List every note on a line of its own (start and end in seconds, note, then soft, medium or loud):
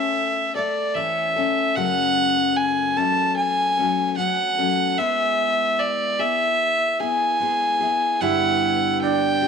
0.00 0.57 A3 soft
0.00 0.56 C#4 soft
0.00 0.54 A4 soft
0.00 0.55 E5 medium
0.55 0.95 A3 soft
0.55 0.96 A4 soft
0.55 0.96 D5 medium
0.95 1.36 E3 soft
0.95 1.36 A3 medium
0.95 1.37 C#4 medium
0.95 1.35 A4 medium
0.95 1.77 E5 medium
1.36 1.76 A3 soft
1.36 1.76 C#4 soft
1.36 1.77 A4 soft
1.75 2.97 F#2 medium
1.75 2.98 C#3 medium
1.75 2.98 F#3 medium
1.75 2.97 A3 medium
1.75 2.96 C#4 medium
1.75 2.95 A4 medium
1.75 2.58 F#5 medium
2.56 2.99 G#5 medium
2.97 3.79 F#3 soft
2.97 3.78 A3 soft
2.97 3.78 C#4 soft
2.97 3.76 A4 soft
2.97 3.36 A5 medium
3.36 4.14 G#5 medium
3.77 4.16 F#3 soft
3.77 4.17 A3 soft
3.77 4.18 C#4 soft
3.77 4.18 A4 medium
4.17 4.58 F#3 soft
4.17 4.59 A3 medium
4.17 4.58 C#4 soft
4.17 4.57 A4 medium
4.17 4.99 F#5 medium
4.58 4.98 F#3 soft
4.58 4.99 A3 soft
4.58 4.99 C#4 soft
4.58 4.99 A4 soft
4.98 6.20 G#3 medium
4.98 6.22 B3 medium
4.98 6.20 E4 medium
4.98 6.18 G#4 medium
4.98 5.81 E5 medium
5.79 6.21 D5 medium
6.19 7.02 B3 soft
6.19 7.00 E4 soft
6.19 6.99 G#4 soft
6.19 7.02 E5 medium
7.00 7.40 B3 soft
7.00 7.41 E4 soft
7.00 7.41 G#4 soft
7.00 8.22 G#5 medium
7.40 7.81 G#3 soft
7.40 7.82 B3 soft
7.40 7.81 E4 medium
7.40 7.79 G#4 soft
7.80 8.21 B3 soft
7.80 8.22 E4 soft
7.80 8.21 G#4 soft
8.21 9.43 G2 medium
8.21 9.43 D3 medium
8.21 9.43 G3 medium
8.21 9.43 B3 medium
8.21 9.42 D4 medium
8.21 9.01 E4 medium
8.21 9.41 G4 medium
8.21 9.01 F#5 medium
9.01 9.48 D4 medium
9.01 9.48 G5 medium
9.42 9.48 G3 soft
9.42 9.48 B3 soft
9.42 9.48 D4 soft
9.42 9.48 G4 soft